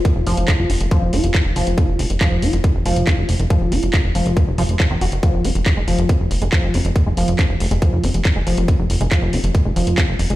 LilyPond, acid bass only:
\new Staff \with { instrumentName = "Acid bass" } { \clef bass \time 4/4 \key f \minor \tempo 4 = 139 aes16 r16 f8 f'8 aes16 r16 f8 f'8 aes16 r16 f8 | f'8 aes16 r16 f8 f'8 aes16 r16 f8 f'8 aes16 r16 | f8 f'8 aes16 r16 f8 f'16 r16 f16 r16 f16 ees16 ges'16 r16 | f8 f'16 r8 aes16 f8 f'16 r8 aes16 f8 f'16 r16 |
r16 aes16 f8 f'16 r8 aes16 f8 f'16 r8 aes16 f8 | f'16 r8 aes16 f8 f'16 r8 aes16 f8 f'16 r8 aes16 | }